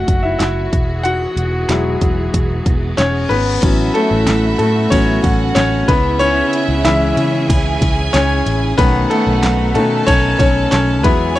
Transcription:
Already playing: grand piano F#3 A3 C#4 E4 F#4 E5 F#5, string section A3 C#4 F#4
0.08 picked electric bass F#1, kick, closed hi-hat
0.23 grand piano E4 E5
0.39 picked electric bass F#1, grand piano E4 E5, snare, clap, closed hi-hat
0.72 picked electric bass E1, string section E3 B3 G#4, kick, closed hi-hat
1.03 grand piano F#4 F#5, closed hi-hat
1.36 picked electric bass E1, closed hi-hat
1.69 picked electric bass E1, grand piano F#3 G#3 E4, snare, clap, closed hi-hat
2.01 picked electric bass E1, kick, closed hi-hat
2.34 picked electric bass E1, kick, closed hi-hat, reverse cymbal
2.66 picked electric bass E1, kick, closed hi-hat
2.97 picked electric bass E1, grand piano C#4 C#5, snare, clap, closed hi-hat
3.29 picked electric bass G#1, grand piano B3 B4, closed hi-hat
3.62 picked electric bass A1, grand piano F#3 B3 C#4, string section A3 C#4 F#4, violin section E4 E5, kick, crash, ride
3.94 grand piano A3 A4, ride
4.11 picked electric bass A1
4.27 picked electric bass A1, snare, clap, ride
4.58 picked electric bass A2, grand piano A3 A4, ride
4.90 picked electric bass A1, grand piano F#3 B3 C#4 C#5, kick, ride
5.24 picked electric bass A1, violin section F#4 F#5, kick, ride
5.55 picked electric bass A1, grand piano C#4 C#5, snare, clap, ride
5.88 picked electric bass C#2, string section C#3 E4 G#4, grand piano B3 B4, violin section E4 E5, kick, ride
6.19 grand piano C#4 C#5, ride
6.53 ride
6.69 picked electric bass C#2
6.84 picked electric bass C#2, grand piano E3 G#3 C#4 E4 E5, snare, clap, ride
7.17 picked electric bass C#3, ride
7.49 picked electric bass C#2, violin section G#4 G#5, kick, ride
7.81 picked electric bass C#2, kick, ride
8.13 picked electric bass C#2, grand piano C#4 C#5, snare, clap, ride
8.46 picked electric bass A1, ride
8.78 picked electric bass B1, grand piano D#3 A3 B3 C#4 B4, string section A3 B3 D#4, violin section F#4 F#5, kick, ride
9.10 grand piano A3 A4, ride
9.27 picked electric bass B1
9.43 picked electric bass B1, snare, clap, ride
9.74 picked electric bass B2, grand piano D#3 A3 C#4 A4, violin section A4 A5, ride
10.07 picked electric bass B1, grand piano C#4 C#5, kick, ride
10.39 picked electric bass B1, grand piano C#4 C#5, kick, ride
10.71 picked electric bass B1, grand piano C#4 C#5, snare, clap, ride
11.03 picked electric bass E2, string section E3 B3 F#4 G#4, grand piano F#3 G#3 B3 E4 B4, violin section G#4 G#5, kick, ride
11.36 grand piano C#5

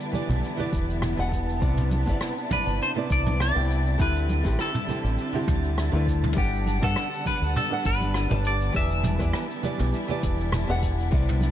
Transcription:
Already playing: string section D3 G3 B3 E4, synth texture A5
0.00 shaker
0.12 nylon-string guitar E3 B3 G4 D5, high conga, low conga, shaker
0.29 fingered electric bass B1, mid tom, shaker
0.44 shaker
0.57 nylon-string guitar E3 B3 G4 D5, low conga
0.73 fingered electric bass E1, kick, shaker
0.90 shaker
1.02 cross-stick, mid tom, shaker
1.17 fingered electric bass E1, nylon-string guitar E3 B3 G4 F#5
1.32 kick, shaker
1.49 shaker
1.60 fingered electric bass C2, nylon-string guitar C3 B3 E4 D5, string section C3 D4 E4, kick, shaker
1.77 mid tom, shaker
1.91 high conga, shaker
2.06 fingered electric bass G1, nylon-string guitar C3 B3 E4 D5, kick, shaker
2.21 cross-stick, shaker
2.38 shaker
2.49 nylon-string guitar C3 B3 E4 D5, clean electric guitar B4, kick, mid tom, high conga, low conga, shaker
2.67 fingered electric bass G1, shaker
2.82 clean electric guitar C5, shaker
2.95 nylon-string guitar C3 B3 E4 D5
3.10 fingered electric bass C2, clean electric guitar D5, kick, shaker
3.27 mid tom, high conga, shaker
3.40 clean electric guitar D5, cross-stick, shaker
3.55 fingered electric bass C2, nylon-string guitar C3 B3 E4 G5
3.71 shaker
3.86 shaker
3.98 fingered electric bass D2, nylon-string guitar D3 C4 E4 G4, string section D3 G3 C4, clean electric guitar B4, kick, mid tom, shaker
4.16 shaker
4.29 high conga, shaker
4.43 fingered electric bass A1, nylon-string guitar D3 C4 E4 G4, kick, cross-stick, shaker
4.59 clean electric guitar A4, cross-stick, shaker
4.75 mid tom, shaker
4.87 nylon-string guitar D3 C4 E4 G4, high conga, low conga, shaker
5.04 fingered electric bass A1, shaker
5.18 shaker
5.33 nylon-string guitar D3 C4 E4 G4, low conga
5.48 fingered electric bass D2, kick, mid tom, shaker
5.65 shaker
5.78 cross-stick, shaker
5.92 fingered electric bass D2, nylon-string guitar D3 C4 E4 B4
6.07 kick, shaker
6.23 mid tom, shaker
6.35 fingered electric bass G1, nylon-string guitar G3 D4 B4 F#5, string section G3 B3 F#5, clean electric guitar G4, kick, shaker
6.55 shaker
6.66 closed hi-hat, high conga, shaker
6.81 fingered electric bass G2, nylon-string guitar G3 D4 B4 F#5, clean electric guitar A4, kick, mid tom, shaker
6.96 cross-stick, shaker
7.14 shaker
7.24 nylon-string guitar G3 D4 B4 F#5, clean electric guitar B4, kick, closed hi-hat, high conga, low conga, shaker
7.42 fingered electric bass D2, shaker
7.56 clean electric guitar A4, mid tom, shaker
7.70 nylon-string guitar G3 D4 B4 F#5
7.85 fingered electric bass G1, clean electric guitar B4, kick, closed hi-hat, shaker
8.01 high conga, shaker
8.14 cross-stick, shaker
8.29 fingered electric bass G1, nylon-string guitar G3 D4 B4 A5, mid tom
8.45 clean electric guitar D5, closed hi-hat, shaker
8.61 shaker
8.72 fingered electric bass E1, nylon-string guitar E3 B3 G4 D5, string section G3 E4, clean electric guitar E5, kick, shaker
8.91 shaker
9.04 closed hi-hat, mid tom, high conga, shaker
9.18 fingered electric bass E2, nylon-string guitar E3 B3 G4 D5, kick, cross-stick, shaker
9.33 cross-stick, shaker
9.51 shaker
9.62 nylon-string guitar E3 B3 G4 D5, closed hi-hat, high conga, low conga, shaker
9.79 fingered electric bass B1, mid tom, shaker
9.94 shaker
10.08 nylon-string guitar E3 B3 G4 D5, low conga
10.23 fingered electric bass E1, kick, closed hi-hat, shaker
10.40 shaker
10.52 cross-stick, mid tom, shaker
10.67 fingered electric bass E1, nylon-string guitar E3 B3 G4 F#5
10.82 kick, closed hi-hat, shaker
11.00 shaker
11.11 fingered electric bass C2, nylon-string guitar C3 B3 E4 D5, string section C3 B3 D4, kick, shaker
11.29 mid tom, shaker
11.41 closed hi-hat, high conga, shaker

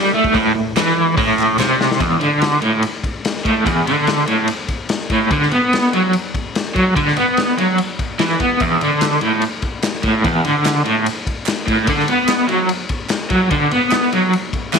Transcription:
Already playing: overdriven electric guitar G3
0.14 overdriven electric guitar A3
0.24 kick
0.33 overdriven electric guitar A2, kick, open hi-hat
0.55 overdriven electric guitar A2
0.76 overdriven electric guitar E3, snare, clap, open hi-hat
1.17 overdriven electric guitar A2, kick, open hi-hat
1.39 clap
1.59 overdriven electric guitar C3, snare, clap
1.81 snare
1.92 snare
2.00 overdriven electric guitar E2, kick, ride
2.20 overdriven electric guitar D3, ride
2.42 snare, ride
2.62 overdriven electric guitar A2, ride
2.83 ride
3.04 kick, ride
3.25 snare, ride
3.37 snare
3.45 overdriven electric guitar A2, kick, ride
3.65 overdriven electric guitar E2, kick, ride
3.86 overdriven electric guitar D3, ride
4.07 snare, ride
4.27 overdriven electric guitar A2, ride
4.48 ride
4.68 kick, ride
4.89 snare, ride
5.10 overdriven electric guitar A2, kick, ride
5.31 overdriven electric guitar D3, kick, ride
5.42 snare
5.51 overdriven electric guitar B3, ride
5.73 snare, ride
5.93 overdriven electric guitar F#3, ride
6.13 ride
6.34 kick, ride
6.55 snare, ride
6.75 overdriven electric guitar F#3, kick, ride
6.96 overdriven electric guitar D3, kick, ride
7.08 snare
7.16 overdriven electric guitar B3, ride
7.37 snare, ride
7.58 overdriven electric guitar F#3, ride
7.78 ride
7.99 kick, ride
8.19 overdriven electric guitar E3, snare, ride
8.40 overdriven electric guitar B3, kick, ride
8.60 overdriven electric guitar E2, kick, ride
8.81 overdriven electric guitar D3, ride
9.01 snare, clap, ride
9.21 overdriven electric guitar A2, ride
9.41 ride
9.62 kick, ride
9.82 snare, clap, ride
9.95 snare
10.03 overdriven electric guitar A2, kick, ride
10.24 overdriven electric guitar E2, kick, ride
10.44 overdriven electric guitar D3, ride
10.65 snare, clap, ride
10.85 overdriven electric guitar A2, ride
11.06 ride
11.27 kick, ride
11.46 snare, clap, ride
11.67 overdriven electric guitar A2, kick, ride
11.87 overdriven electric guitar D3, kick, ride
11.99 snare
12.08 overdriven electric guitar B3, ride
12.28 snare, clap, ride
12.48 overdriven electric guitar F#3, ride
12.69 ride
12.89 kick, ride
13.09 snare, clap, ride
13.30 overdriven electric guitar F#3, kick, ride
13.51 overdriven electric guitar D3, kick, ride
13.71 overdriven electric guitar B3, ride
13.91 snare, clap, ride
14.12 overdriven electric guitar F#3, ride
14.33 ride
14.53 kick, ride
14.73 overdriven electric guitar E3, snare, clap, ride

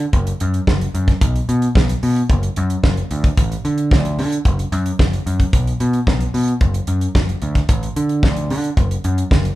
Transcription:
0.00 closed hi-hat
0.13 picked electric bass F#1, kick, closed hi-hat
0.27 closed hi-hat
0.40 picked electric bass F#2, closed hi-hat
0.54 closed hi-hat
0.67 picked electric bass F#1, kick, snare
0.81 closed hi-hat
0.94 picked electric bass F#2, closed hi-hat
1.08 kick, snare, closed hi-hat
1.21 picked electric bass B1, kick, closed hi-hat
1.36 closed hi-hat
1.49 picked electric bass B2, closed hi-hat
1.62 closed hi-hat
1.75 picked electric bass B1, kick, snare
1.89 closed hi-hat
2.03 picked electric bass B2, open hi-hat
2.16 closed hi-hat
2.29 picked electric bass F#1, kick, closed hi-hat
2.43 closed hi-hat
2.56 picked electric bass F#2, closed hi-hat
2.70 closed hi-hat
2.83 picked electric bass F#1, kick, snare
2.97 closed hi-hat
3.11 picked electric bass D2, closed hi-hat
3.24 kick, closed hi-hat
3.37 picked electric bass A1, kick, closed hi-hat
3.52 closed hi-hat
3.65 picked electric bass D3, closed hi-hat
3.78 closed hi-hat
3.91 picked electric bass D2, kick, snare
4.05 closed hi-hat
4.19 picked electric bass D3, open hi-hat
4.32 closed hi-hat
4.45 picked electric bass F#1, kick, closed hi-hat
4.59 closed hi-hat
4.72 picked electric bass F#2, closed hi-hat
4.86 closed hi-hat
4.99 picked electric bass F#1, kick, snare
5.13 closed hi-hat
5.26 picked electric bass F#2, closed hi-hat
5.40 kick, closed hi-hat
5.53 picked electric bass B1, kick, closed hi-hat
5.67 closed hi-hat
5.80 picked electric bass B2, closed hi-hat
5.93 closed hi-hat
6.07 picked electric bass B1, kick, snare
6.21 closed hi-hat
6.34 picked electric bass B2, open hi-hat
6.48 closed hi-hat
6.61 picked electric bass F#1, kick, closed hi-hat
6.74 closed hi-hat
6.87 picked electric bass F#2, closed hi-hat
7.01 closed hi-hat
7.15 picked electric bass F#1, kick, snare
7.29 closed hi-hat
7.42 picked electric bass D2, closed hi-hat
7.55 kick, snare, closed hi-hat
7.69 picked electric bass A1, kick, closed hi-hat
7.83 closed hi-hat
7.96 picked electric bass D3, closed hi-hat
8.09 closed hi-hat
8.23 picked electric bass D2, kick, snare
8.37 closed hi-hat
8.50 picked electric bass D3, open hi-hat
8.64 closed hi-hat
8.77 picked electric bass F#1, kick, closed hi-hat
8.91 closed hi-hat
9.04 picked electric bass F#2, closed hi-hat
9.18 closed hi-hat
9.31 picked electric bass F#1, kick, snare
9.45 closed hi-hat

